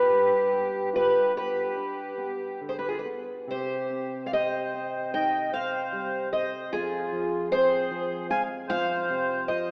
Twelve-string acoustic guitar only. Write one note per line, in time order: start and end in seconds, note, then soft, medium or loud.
0.00 0.94 B4 medium
0.96 1.33 B4 medium
1.37 2.64 B4 medium
2.69 2.77 C5 medium
2.79 2.87 B4 medium
2.89 2.97 G#4 medium
2.99 3.07 B4 medium
3.51 4.26 C5 medium
4.26 4.33 F5 medium
4.33 5.10 D#5 medium
5.14 5.53 G5 medium
5.53 6.29 F5 medium
6.33 6.74 D#5 medium
6.73 7.55 G#4 medium
7.52 8.27 C5 loud
8.31 8.41 G#5 loud
8.70 9.48 F5 loud
9.48 9.71 D#5 medium